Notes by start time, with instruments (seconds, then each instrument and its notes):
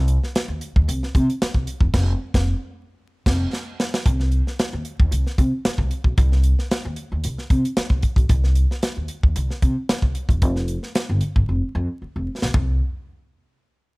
Already playing: upright bass C2
0.08 closed hi-hat
0.24 snare
0.35 snare, closed hi-hat
0.48 upright bass D#2
0.61 closed hi-hat
0.76 upright bass D#2, kick
0.88 upright bass C2, closed hi-hat
1.03 snare
1.15 upright bass C3, kick, closed hi-hat
1.30 closed hi-hat
1.42 muted upright bass stroke, snare, closed hi-hat
1.54 upright bass C2, kick
1.67 closed hi-hat
1.81 upright bass E1, kick
1.94 upright bass F1, kick, snare, crash
2.34 upright bass F1, kick, snare
3.26 upright bass F1, kick, snare, crash
3.53 snare
3.80 snare
3.94 snare
4.06 upright bass C2, kick, closed hi-hat
4.20 snare
4.32 closed hi-hat
4.47 snare
4.59 snare, closed hi-hat
4.73 upright bass D#2
4.85 closed hi-hat
5.00 upright bass D#2, kick
5.11 upright bass C2, closed hi-hat
5.27 snare
5.38 upright bass C3, kick, closed hi-hat
5.65 muted upright bass stroke, snare, closed hi-hat
5.78 upright bass C2, kick
5.91 closed hi-hat
6.04 upright bass B1, kick
6.18 upright bass C2, kick, closed hi-hat
6.32 snare
6.43 closed hi-hat
6.59 snare
6.71 snare, closed hi-hat
6.85 upright bass D#2
6.96 closed hi-hat
7.12 upright bass D#2
7.24 upright bass C2, closed hi-hat
7.38 snare
7.50 upright bass C3, kick, closed hi-hat
7.65 closed hi-hat
7.77 muted upright bass stroke, snare, closed hi-hat
7.90 upright bass C2, kick
8.03 kick, closed hi-hat
8.16 upright bass B1, kick, closed hi-hat
8.29 upright bass C2, kick, closed hi-hat
8.44 snare
8.55 closed hi-hat
8.71 snare
8.83 snare, closed hi-hat
8.97 upright bass D#2
9.08 closed hi-hat
9.23 upright bass D#2, kick
9.36 upright bass C2, closed hi-hat
9.51 snare
9.62 upright bass C3, kick, closed hi-hat
9.89 muted upright bass stroke, snare, closed hi-hat
10.02 upright bass C2, kick
10.15 closed hi-hat
10.29 upright bass E1, kick, closed hi-hat
10.42 upright bass F1, kick, closed hi-hat
10.56 snare
10.68 closed hi-hat
10.83 snare
10.95 snare, closed hi-hat
11.09 upright bass G1
11.21 closed hi-hat
11.36 upright bass G1, kick
11.49 upright bass F1
11.75 upright bass F2
12.02 muted upright bass stroke
12.16 upright bass F1
12.42 upright bass B1, snare
12.54 upright bass C2, kick, floor tom